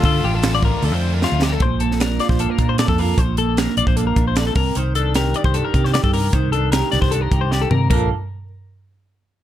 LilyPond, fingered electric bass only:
\new Staff \with { instrumentName = "Fingered electric bass" } { \clef bass \time 4/4 \key bes \major \tempo 4 = 152 d8 a,,4. d,16 f,4 d,8. | bes,,4.~ bes,,16 bes,,8 r16 bes,8. f,8. | bes,,4. bes,,16 bes,,8. bes,,4 c,8 | c,4.~ c,16 c,8 r16 c8. g,8. |
c,4. c,16 c,8. c,4 c8 | bes,,8 r2. r8 | }